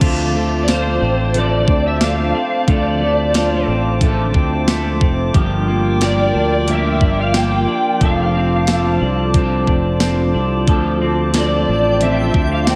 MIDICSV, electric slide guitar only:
0, 0, Header, 1, 2, 480
1, 0, Start_track
1, 0, Key_signature, -1, "minor"
1, 0, Tempo, 666667
1, 9, Time_signature, 4, 2, 24, 8
1, 9184, End_track
2, 0, Start_track
2, 0, Title_t, "Electric slide guitar"
2, 0, Program_c, 0, 29
2, 457, Note_on_c, 0, 74, 66
2, 498, Note_off_c, 0, 74, 0
2, 508, Note_on_c, 0, 72, 85
2, 992, Note_off_c, 0, 72, 0
2, 992, Note_on_c, 0, 74, 94
2, 1343, Note_off_c, 0, 74, 0
2, 1346, Note_on_c, 0, 76, 97
2, 1461, Note_off_c, 0, 76, 0
2, 1468, Note_on_c, 0, 77, 98
2, 1946, Note_on_c, 0, 74, 98
2, 1952, Note_off_c, 0, 77, 0
2, 2629, Note_off_c, 0, 74, 0
2, 4345, Note_on_c, 0, 74, 80
2, 4825, Note_on_c, 0, 76, 98
2, 4831, Note_off_c, 0, 74, 0
2, 5184, Note_off_c, 0, 76, 0
2, 5187, Note_on_c, 0, 77, 92
2, 5297, Note_off_c, 0, 77, 0
2, 5300, Note_on_c, 0, 79, 94
2, 5788, Note_off_c, 0, 79, 0
2, 5791, Note_on_c, 0, 77, 91
2, 6471, Note_off_c, 0, 77, 0
2, 8190, Note_on_c, 0, 74, 81
2, 8654, Note_on_c, 0, 76, 104
2, 8674, Note_off_c, 0, 74, 0
2, 8986, Note_off_c, 0, 76, 0
2, 9018, Note_on_c, 0, 77, 90
2, 9135, Note_off_c, 0, 77, 0
2, 9138, Note_on_c, 0, 79, 88
2, 9184, Note_off_c, 0, 79, 0
2, 9184, End_track
0, 0, End_of_file